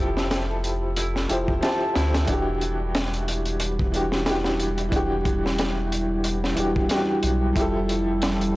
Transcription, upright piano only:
Already playing: F3 E4 G4 A4 C5
1.28 F3 E4 G4
1.32 C5
1.61 F3 E4 G4
1.65 C5
2.25 E3 D4
2.30 F#4 G4
3.92 E3 D4 F#4 G4
4.25 E3 D4 F#4
4.29 G4
4.89 E3 D4
4.94 F#4 G4
6.55 E3 D4 F#4
6.59 G4
6.88 E3 D4 F#4 G4
7.53 F3 E4
7.58 G4 A4

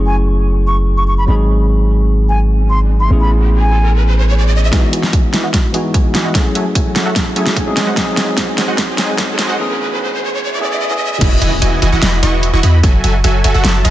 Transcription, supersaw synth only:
4.73 E3 E4 F#4 D#5 G#5
4.93 E3 E4 F#4 D#5 G#5
5.13 E3 E4 F#4 D#5 G#5
5.33 E3 E4 F#4 D#5 G#5
5.44 E3 E4 F#4 D#5 F#5
5.54 E3 E4 F#4 B5
5.74 E3 E4 F#4 D#5 G#5
5.94 E3 E4 F#4 D#5 G#5
6.15 E3 E4 F#4 D#5 G#5
6.25 E3 E4 F#4 D#5 F#5
6.35 F#3 F#4 A4 E5 G#5
6.55 F#3 F#4 A4 E5 G#5
6.75 F#3 F#4 A4 E5 G#5
6.96 F#3 F#4 A4 E5 G#5
7.06 F#3 F#4 A4 E5 F#5
7.16 F#3 F#4 A4 E5 A5
7.36 F#3 F#4 A4 E5 G#5
7.56 F#3 F#4 A4 E5 G#5
7.77 G#3 F#4 C5 D#5 G#5
7.87 G#3 F#4 C5 D#5 F#5
7.97 G#3 F#4 C5 D#5 G#5
8.17 G#3 F#4 C5 D#5 G#5
8.38 G#3 F#4 C5 D#5 G#5
8.58 G#3 F#4 C5 D#5 G#5
8.68 G#3 F#4 C5 D#5 F#5
8.78 G#3 C5 C6
8.98 G#3 F#4 C5 D#5 G#5
9.19 G#3 F#4 C5 D#5 G#5
9.39 G#3 F#4 C5 D#5 G#5
9.49 G#3 F#4 C5 D#5 F#5
11.21 E3 E4 F#4 D#5 G#5
11.41 E3 E4 F#4 D#5 G#5
11.62 E3 E4 F#4 D#5 G#5
11.82 E3 E4 F#4 D#5 G#5
11.92 E3 E4 F#4 D#5 F#5
12.03 E3 E4 F#4 D#5 B5
12.23 E3 E4 F#4 D#5 C#6
12.53 E3 E4 F#4 D#5 C#6
12.63 E3 E4 F#4 D#5 B5
12.83 F#3 F#4 A4 E5 G#5
13.04 F#3 F#4 A4 E5 G#5
13.24 F#3 F#4 A4 E5 G#5
13.44 F#3 F#4 A4 E5 G#5
13.54 F#3 F#4 A4 E5 F#5
13.64 F#3 F#4 A4 E5 A5
13.85 F#3 F#4 A4 E5 B5

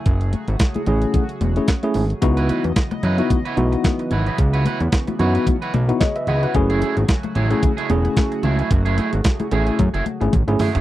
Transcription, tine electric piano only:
0.75 E4 G#4
0.87 A3 C#4 E4 G#4
1.57 A3 C#4 E4 G#4
1.83 A3 C#4 E4 G#4
2.22 B3 D#4 E4 F#4
3.18 B3 D#4 E4 F#4
3.57 B3 D#4 E4 F#4
5.07 E4 F#4
5.19 B3 D#4 E4 F#4
5.88 B3 D#4 E4 F#4
6.00 G#4 C#5 D#5
6.16 B4 E5
6.28 G#4 D#5 F#5
6.43 F#4 B4
6.55 A3 C#4 E4 G#4
7.51 A3 C#4 E4 G#4
7.90 A3 C#4 E4 G#4
9.40 E4 G#4
9.52 A3 C#4 E4 G#4
10.21 A3 C#4 E4 G#4
10.48 A3 C#4 E4 G#4

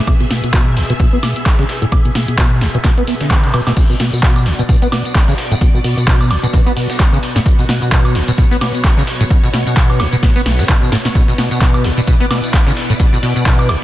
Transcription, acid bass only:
0.07 B2
0.20 B2
0.30 B2
0.43 B2
0.53 B2
0.76 B1
0.90 B2
1.00 B2
1.13 B3
1.23 B2
1.59 C#3
1.82 A2
1.92 B2
2.05 B2
2.15 B2
2.28 B2
2.38 B2
2.61 B1
2.74 B2
2.84 B2
2.97 B3
3.08 B3
3.21 D3
3.44 B2
3.54 B2
3.67 B2
3.77 B2
3.90 B2
4.00 B2
4.13 B2
4.23 B2
4.46 B1
4.59 B2
4.69 B2
4.82 B3
4.92 B2
5.28 C#3
5.51 A2
5.61 B2
5.74 B2
5.84 B2
5.97 B2
6.07 B2
6.30 B1
6.43 B2
6.53 B2
6.66 B3
6.76 B2
7.13 C#3
7.36 A2
7.46 B2
7.59 B2
7.69 B2
7.82 B2
7.92 B2
8.15 B1
8.28 B2
8.38 B2
8.51 B3
8.61 B2
8.97 C#3
9.20 A2
9.30 B2
9.43 B2
9.53 B2
9.67 B2
9.77 B2
10.00 B1
10.13 B2
10.23 B2
10.36 B3
10.46 B1
10.59 B2
10.69 B2
10.82 B2
10.92 A2
11.05 B2
11.15 B2
11.28 B2
11.38 B2
11.51 B2
11.61 B2
11.84 B1
11.97 B2
12.07 B2
12.20 B3
12.30 B2
12.67 C#3
12.90 A2
13.00 B2
13.13 B2
13.23 B2
13.36 B2
13.46 B2
13.69 B1

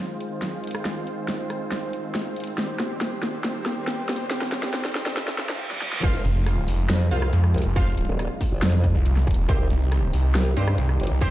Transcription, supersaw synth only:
Already playing: D#3 G#3 C4 F4 C5
2.58 D#3 G3 G4 C5
6.03 C3 F3 G#3 D#4 F4
9.49 D#3 G3 G4

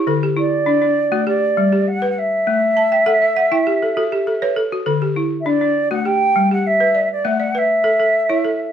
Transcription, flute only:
0.38 D5
1.28 D5
1.87 F#5
2.10 F#5
2.18 E5
5.40 E5
5.45 D5
5.91 F#5
6.06 G5
6.52 F#5
6.66 E5
7.12 D5
7.27 F#5
7.58 E5

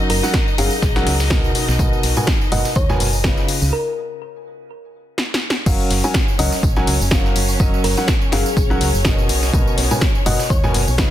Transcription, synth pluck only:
0.10 A#4
0.58 G#4
2.52 D#5
2.76 C#5
3.73 A#4
6.39 D#5
7.84 A#4
8.33 G#4
10.26 D#5
10.50 C#5

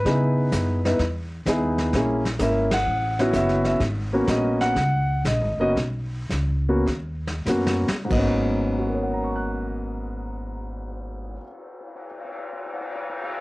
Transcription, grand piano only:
0.05 B3 D#4 E4 G#4 B4
0.85 B3 D#4 E4 B4
1.47 B3 D#4 E4 G#4
1.95 A#3 C#4 E4 G#4
2.40 A#3 C#4 E4 A#4 E5
2.73 F#5
3.20 B3 C#4 E4 F#4
3.36 E5
3.66 E5
4.13 A#3 B3 C#4 F#4
4.29 D#5
4.61 F#5
5.27 D#5
5.60 A#3 B3 C#4 F#4 D#5
6.69 A#3 B3 C#4 F#4
7.48 A#3 B3 C#4 F#4
8.05 G#2 F#3
8.11 A#3 B3 D#5
8.17 C#4
8.78 F#4
8.86 A#4
8.94 C#5
9.03 F#5
9.13 A#5
9.24 C#6
9.36 F#6

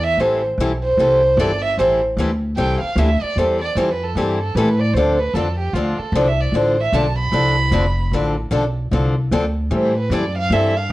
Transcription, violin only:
0.04 E5
0.20 C5
0.83 C5
1.38 D5
1.62 E5
1.78 C5
2.56 G5
2.81 F5
2.98 E5
3.22 D5
3.38 C5
3.61 D5
3.77 C5
3.91 B4
4.03 A4
4.17 G4
4.40 A4
4.55 B4
4.79 D5
4.93 C5
5.19 B4
5.34 A4
5.58 G4
5.74 F4
5.98 A4
6.14 C5
6.27 E5
6.41 D5
6.55 C5
6.80 E5
6.94 A5
7.18 B5
9.72 C5
9.98 B4
10.12 D5
10.38 F5
10.52 E5
10.77 F5

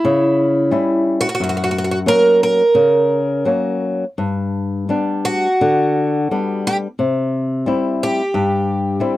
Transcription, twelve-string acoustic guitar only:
Already playing: E4
1.21 F#4
1.29 F#4
1.35 F#4
1.44 F#4
1.49 F#4
1.57 F#4
1.64 F#4
1.71 F#4
1.78 F#4
1.84 F#4
1.91 F#4
2.08 A#4
2.43 A#4
5.25 F#4
6.67 G4
8.03 G4

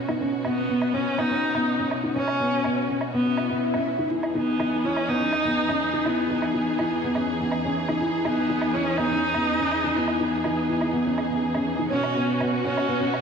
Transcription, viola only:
0.46 B3
0.95 C#4
1.19 D#4
2.15 C#4
3.13 B3
4.36 B3
4.85 C#4
5.09 D#4
6.06 B3
6.55 B3
8.26 B3
8.74 C#4
8.97 D#4
9.96 B3
10.43 B3
11.91 C#4
12.64 C#4

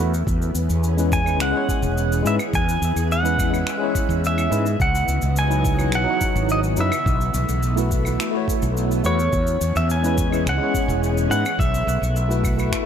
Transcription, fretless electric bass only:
Already playing: E2
0.27 E2
0.55 E2
0.70 E2
1.40 C#2
1.82 E1
2.25 G#2
2.53 E2
2.82 E2
2.96 E2
4.09 E2
4.51 G#2
4.80 C#2
5.08 C#2
5.23 C#2
5.93 B1
6.36 G#1
6.78 F#2
7.06 B1
7.34 B1
7.49 B1
8.63 B1
9.04 E2
9.33 E2
9.61 E2
9.76 E2
10.46 C#2
10.88 E1
11.30 G#2
11.59 B1
11.87 B1
12.02 B1

